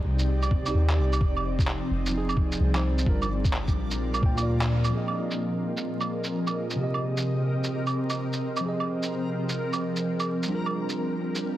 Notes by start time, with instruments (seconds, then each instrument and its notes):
Already playing: ambient pad C3 C4 D#4 G4, synth texture D5
0.04 808-style bass C2
0.19 shaker
0.43 claves, shaker
0.51 kick
0.62 tine electric piano C3 C4, claves, shaker
0.68 tine electric piano D#4 G4
0.74 808-style bass D#2
0.90 clap, shaker
0.98 808-style bass C2
1.13 claves, shaker
1.20 808-style bass F1, ambient pad F3, kick
1.36 claves
1.59 kick, shaker
1.67 clap
1.88 808-style bass F1, ambient pad G#4
2.06 tine electric piano F3, shaker
2.12 tine electric piano C4 D#4
2.18 tine electric piano G#4
2.29 claves, shaker
2.37 kick
2.52 shaker
2.60 808-style bass C2
2.73 tine electric piano F3 C4 D#4 C5, clap, claves, shaker
2.98 shaker
3.05 808-style bass G1, tine electric piano G3 D4 F4 A#4, ambient pad G3, kick
3.22 claves, shaker
3.45 ambient pad D4, kick, shaker
3.49 ambient pad F4 A#4
3.53 clap
3.68 kick, shaker
3.76 808-style bass A#1
3.91 shaker
3.99 ambient pad A#2
4.14 claves, shaker
4.22 808-style bass D2, tine electric piano A#2 A#3 F4, kick
4.26 ambient pad A#3, tine electric piano G5
4.35 tine electric piano A#2 A#3, claves, shaker
4.40 tine electric piano F4 D5
4.61 clap, shaker
4.84 claves, shaker
4.89 tine electric piano F3 C4, ambient pad F3, synth texture A#4
4.95 tine electric piano G#4 D#5
5.08 claves
5.31 ambient pad C4, shaker
5.77 ambient pad G#4 D#5, shaker
6.01 claves, shaker
6.24 shaker
6.47 claves, shaker
6.70 shaker
6.76 tine electric piano C3 C4, ambient pad C3
6.81 tine electric piano G4 D#5
6.94 claves
7.11 ambient pad G4
7.17 shaker
7.64 shaker
7.87 claves, shaker
8.10 claves, shaker
8.33 shaker
8.57 tine electric piano F3, claves, shaker
8.63 ambient pad F3, tine electric piano C4 G#4
8.68 tine electric piano D#5
8.80 claves
9.03 shaker
9.49 ambient pad G#4, shaker
9.73 claves, shaker
9.96 shaker
10.20 claves, shaker
10.43 tine electric piano G3, shaker
10.49 ambient pad G3, tine electric piano D4 F4
10.55 tine electric piano A#4
10.66 claves
10.89 shaker
11.13 ambient pad D4
11.35 ambient pad A#4 F5, shaker